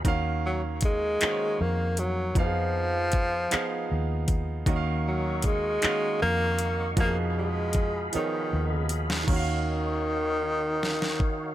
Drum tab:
CC |------------|------------|------------|------------|
HH |x---x-x---x-|x---x-x---x-|x---x-x---x-|x---x-x---x-|
CP |------x-----|------x-----|------x-----|------------|
SD |------------|------------|------------|-----------o|
BD |o---o-------|o---o-----o-|o---o-------|o---o-------|

CC |x-----------|
HH |------------|
CP |------------|
SD |--------oo--|
BD |o---------o-|